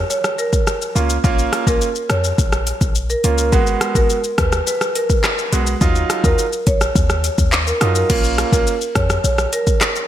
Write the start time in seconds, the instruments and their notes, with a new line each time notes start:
0.10 marimba C#5, shaker
0.24 cross-stick, shaker
0.38 marimba A#4, shaker
0.53 kick, shaker
0.67 cross-stick, shaker
0.82 shaker
0.95 808-style bass C#2, grand piano A#3 C#4 F4, shaker
1.10 shaker
1.24 808-style bass A#1, grand piano A#3 C#4 F4, kick, shaker
1.39 shaker
1.53 cross-stick, closed hi-hat, shaker
1.67 808-style bass A#1, grand piano A#3 C#4 F4, marimba A#4, kick, shaker
1.81 shaker
1.95 shaker
2.10 808-style bass F2, marimba C#5, cross-stick, closed hi-hat, shaker
2.24 shaker
2.38 808-style bass A#1, kick, shaker
2.52 cross-stick, shaker
2.67 closed hi-hat, shaker
2.81 808-style bass A#1, kick, shaker
2.95 shaker
3.10 marimba A#4, shaker
3.24 808-style bass C#2, grand piano A#3 C#4 F4, closed hi-hat, shaker
3.38 marimba A#4, shaker
3.52 808-style bass G#1, grand piano G#3 B3 F#4, kick, shaker
3.67 shaker
3.81 cross-stick, closed hi-hat, shaker
3.95 808-style bass G#1, grand piano G#3 B3 F#4, marimba A#4, kick, shaker
4.10 shaker
4.24 shaker
4.38 808-style bass D#2, marimba B4, kick, cross-stick, closed hi-hat, shaker
4.52 cross-stick, shaker
4.67 marimba B4, shaker
4.81 cross-stick, shaker
4.95 marimba A#4, closed hi-hat, shaker
5.10 kick, shaker
5.24 cross-stick, clap, shaker
5.38 shaker
5.52 808-style bass B1, grand piano G#3 B3 F#4, closed hi-hat, shaker
5.67 shaker
5.81 808-style bass D#2, grand piano F#3 D#4 F4, kick, shaker
5.95 shaker
6.10 cross-stick, closed hi-hat, shaker
6.24 808-style bass D#2, grand piano F#3 D#4 F4, marimba A#4, kick, shaker
6.38 shaker
6.53 shaker
6.67 808-style bass A#1, marimba C#5, kick, closed hi-hat, shaker
6.81 cross-stick, shaker
6.96 808-style bass D#2, kick, shaker
7.10 cross-stick, shaker
7.24 closed hi-hat, shaker
7.38 808-style bass D#2, kick, shaker
7.52 clap, shaker
7.67 marimba A#4, shaker
7.81 808-style bass F#2, grand piano F#3 D#4 F4, cross-stick, closed hi-hat, shaker
7.95 marimba A#4, shaker
8.10 808-style bass A#1, grand piano A#3 C#4 F4, kick, crash, shaker
8.24 shaker
8.38 cross-stick, closed hi-hat, shaker
8.52 808-style bass A#1, grand piano A#3 C#4 F4, marimba A#4, kick, shaker
8.67 shaker
8.81 shaker
8.95 808-style bass F2, marimba C#5, kick, cross-stick, closed hi-hat, shaker
9.10 cross-stick, shaker
9.24 808-style bass A#1, marimba C#5, shaker
9.38 cross-stick, shaker
9.53 marimba A#4, closed hi-hat, shaker
9.67 kick, shaker
9.81 cross-stick, clap, shaker
9.96 shaker